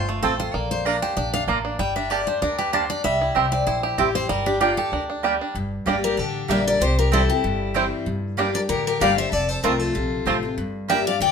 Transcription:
Already playing: upright bass G1, five-string banjo F4
0.09 five-string banjo A3, steel-string acoustic guitar F4
0.22 upright bass A1, mandolin C4 F4 C5 A5, five-string banjo C4, steel-string acoustic guitar A4
0.40 five-string banjo F4, steel-string acoustic guitar C5
0.54 upright bass A#1, five-string banjo A#3, steel-string acoustic guitar D5
0.71 steel-string acoustic guitar C5
0.85 mandolin A#3 F4 D5 A#5, five-string banjo D4, steel-string acoustic guitar A#4
1.02 five-string banjo G4, steel-string acoustic guitar C5
1.17 upright bass A#1, five-string banjo D4, steel-string acoustic guitar D5
1.34 five-string banjo D4, steel-string acoustic guitar F5
1.47 upright bass A1, mandolin A#3 F4 D5 A#5, five-string banjo A#3
1.65 five-string banjo D4
1.79 upright bass G1, five-string banjo G3, steel-string acoustic guitar G5
1.96 five-string banjo D4, steel-string acoustic guitar E5
2.10 mandolin A#3 G4 D5 A5, five-string banjo G4, steel-string acoustic guitar D5
2.27 five-string banjo D4, steel-string acoustic guitar C5
2.42 upright bass D2, five-string banjo D4, steel-string acoustic guitar A#4
2.58 five-string banjo G4, steel-string acoustic guitar B4
2.73 mandolin A#3 G4 D5 A5, five-string banjo D4, steel-string acoustic guitar C5
2.90 five-string banjo D4, steel-string acoustic guitar D5
3.04 upright bass C2, five-string banjo G3, steel-string acoustic guitar E5
3.21 five-string banjo E4
3.35 upright bass C2, mandolin C4 E4 C5 G5, five-string banjo G4
3.52 five-string banjo C4, steel-string acoustic guitar D5
3.67 upright bass A#1, five-string banjo E4, steel-string acoustic guitar C5
3.83 steel-string acoustic guitar E4, five-string banjo G4
3.98 upright bass A1, mandolin C4 E4 C5 G5, five-string banjo E4, steel-string acoustic guitar G4
4.15 five-string banjo C4, steel-string acoustic guitar C5
4.29 upright bass G1, five-string banjo G3, steel-string acoustic guitar A#4
4.46 five-string banjo D4, steel-string acoustic guitar G4
4.60 mandolin A#3 G4 D5 G5, five-string banjo D4, steel-string acoustic guitar F4
4.77 five-string banjo G4, steel-string acoustic guitar A4
4.92 upright bass D2, five-string banjo D4, steel-string acoustic guitar A#4
5.10 five-string banjo D4
5.23 five-string banjo G3, mandolin A#3 G4 D5 G5
5.41 five-string banjo D4
5.55 upright bass G1, steel-string acoustic guitar G2
5.86 upright bass G1, steel-string acoustic guitar G3 A#3 D4 G4, five-string banjo G3 D4, mandolin A#3 G4 D5 G5
6.04 fiddle G4, steel-string acoustic guitar A#4
6.17 upright bass A1, steel-string acoustic guitar D3 G4, fiddle D4
6.48 upright bass A#1, steel-string acoustic guitar G3 A#3 D4 G4 E5, five-string banjo G3 D4, mandolin A#3 G4 D5 G5, fiddle A#4
6.67 fiddle A#4, steel-string acoustic guitar D5
6.81 upright bass C2, steel-string acoustic guitar C3 C5, fiddle G4
6.99 fiddle G4, steel-string acoustic guitar A#4
7.12 steel-string acoustic guitar E3 G3 C4 E4 A4, five-string banjo G3 C4 E4, mandolin C4 E4 C5 G5, fiddle E4
7.29 steel-string acoustic guitar C4 E4 G4, fiddle E4
7.44 upright bass G1, steel-string acoustic guitar G2
7.74 steel-string acoustic guitar E3 G3 C4 E4, five-string banjo G3 C4 E4, mandolin C4 E4 C5 G5
8.06 upright bass G1, steel-string acoustic guitar G2
8.37 steel-string acoustic guitar G3 A#3 D4 G4, five-string banjo G3 D4, mandolin A#3 G4 D5 G5
8.54 steel-string acoustic guitar D4 G4 D5, fiddle A#4
8.69 upright bass A1, steel-string acoustic guitar D3 A#4, fiddle G4
8.87 fiddle G4, steel-string acoustic guitar A#4
9.00 upright bass G1, steel-string acoustic guitar G3 A#3 D4 G4 F5, five-string banjo G3 D4, mandolin A#3 G4 D5 G5, fiddle D5
9.18 steel-string acoustic guitar D4 G4 E5, fiddle C5
9.31 upright bass F1, steel-string acoustic guitar F2 D5, fiddle A4
9.49 fiddle A4, steel-string acoustic guitar C5
9.63 upright bass C2, steel-string acoustic guitar F3 A3 C4 F4 A#4, five-string banjo A3 C4 F4, mandolin C4 F4 C5 A5, fiddle F4
9.79 fiddle F4, steel-string acoustic guitar A4
9.95 upright bass A#1, steel-string acoustic guitar C3
10.26 upright bass A1, steel-string acoustic guitar F3 A3 C4 F4, five-string banjo A3 C4 F4, mandolin C4 F4 C5 A5
10.43 steel-string acoustic guitar C4 F4
10.57 upright bass G1, steel-string acoustic guitar G2
10.88 steel-string acoustic guitar G3 A#3 D4 G4 E5, five-string banjo G3 D4, mandolin A#3 G4 D5 G5, fiddle A#4
11.05 steel-string acoustic guitar D4 G4 F5, fiddle D5
11.20 upright bass D2, steel-string acoustic guitar D3 G5, fiddle D5

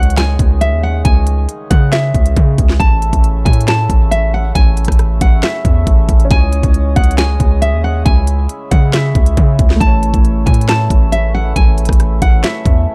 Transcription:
Already playing: 808-style bass C#2, accordion C#3 D#3 G#3, nylon-string guitar F#5
0.03 closed hi-hat
0.10 closed hi-hat
0.17 nylon-string guitar G#5, finger snap, snare, closed hi-hat
0.39 808-style bass C#2, kick, closed hi-hat
0.61 nylon-string guitar E5, closed hi-hat
0.72 808-style bass D#2
0.83 nylon-string guitar F#5
1.05 808-style bass C#2, nylon-string guitar G#5, kick, closed hi-hat
1.27 closed hi-hat
1.49 closed hi-hat
1.70 808-style bass C#3, nylon-string guitar F#5, kick, closed hi-hat
1.92 nylon-string guitar E5, finger snap, snare, closed hi-hat
2.14 808-style bass C#2, kick, closed hi-hat
2.26 closed hi-hat
2.36 808-style bass C#3, kick, closed hi-hat
2.58 808-style bass C#2, kick, closed hi-hat
2.69 snare
2.80 808-style bass A1, accordion A3 E4, nylon-string guitar A5, kick, closed hi-hat
3.02 closed hi-hat
3.13 808-style bass A1, kick, closed hi-hat
3.24 closed hi-hat
3.45 808-style bass A2, nylon-string guitar G#5, kick, closed hi-hat
3.53 closed hi-hat
3.61 closed hi-hat
3.68 nylon-string guitar A5, finger snap, snare, closed hi-hat
3.90 808-style bass A1, kick, closed hi-hat
4.11 nylon-string guitar E5, closed hi-hat
4.34 nylon-string guitar F#5
4.55 808-style bass A1, nylon-string guitar G#5, kick, closed hi-hat
4.77 closed hi-hat, open hi-hat
4.85 808-style bass A1, kick, cross-stick, closed hi-hat
4.92 closed hi-hat
4.99 cross-stick, closed hi-hat
5.21 808-style bass A1, nylon-string guitar F#5, kick, closed hi-hat
5.43 nylon-string guitar E5, finger snap, snare, closed hi-hat
5.65 808-style bass E2, kick, closed hi-hat
5.87 808-style bass A1, kick, closed hi-hat
6.09 808-style bass A1, kick, closed hi-hat
6.20 closed hi-hat
6.25 grand piano C#4
6.30 808-style bass C#2, accordion G#3 D#5, grand piano E4, nylon-string guitar G#5, kick, closed hi-hat
6.36 grand piano C#5
6.53 closed hi-hat
6.63 808-style bass C#2, kick, closed hi-hat
6.74 closed hi-hat
6.96 808-style bass C#2, nylon-string guitar F#5, kick, closed hi-hat
7.04 closed hi-hat
7.11 closed hi-hat
7.18 nylon-string guitar G#5, finger snap, snare, closed hi-hat
7.40 808-style bass C#2, kick, closed hi-hat
7.62 nylon-string guitar E5, closed hi-hat
7.73 808-style bass D#2
7.84 nylon-string guitar F#5
8.05 808-style bass C#2, accordion E4, nylon-string guitar G#5, kick, closed hi-hat
8.27 closed hi-hat
8.49 closed hi-hat
8.71 808-style bass C#3, nylon-string guitar F#5, kick, closed hi-hat
8.93 nylon-string guitar E5, finger snap, snare, closed hi-hat
9.15 808-style bass C#2, kick, closed hi-hat
9.26 closed hi-hat
9.37 808-style bass C#3, kick, closed hi-hat
9.59 808-style bass C#2, kick, closed hi-hat
9.70 snare
9.75 grand piano A3
9.80 808-style bass A1, accordion C#3 E3 A3, grand piano E4, nylon-string guitar A5, kick, closed hi-hat
9.87 grand piano C#5
10.03 closed hi-hat
10.14 808-style bass A1, kick, closed hi-hat
10.25 closed hi-hat
10.46 808-style bass A2, nylon-string guitar G#5, kick, closed hi-hat
10.54 closed hi-hat
10.61 closed hi-hat
10.69 nylon-string guitar A5, finger snap, snare, closed hi-hat
10.90 808-style bass A1, kick, closed hi-hat
11.12 nylon-string guitar E5, closed hi-hat
11.35 nylon-string guitar F#5
11.56 808-style bass A1, nylon-string guitar G#5, kick, closed hi-hat
11.78 closed hi-hat, open hi-hat
11.85 808-style bass A1, kick, cross-stick, closed hi-hat
11.93 closed hi-hat
12.00 cross-stick, closed hi-hat
12.22 808-style bass A1, nylon-string guitar F#5, kick, closed hi-hat
12.44 nylon-string guitar E5, finger snap, snare, closed hi-hat
12.66 808-style bass E2, kick, closed hi-hat

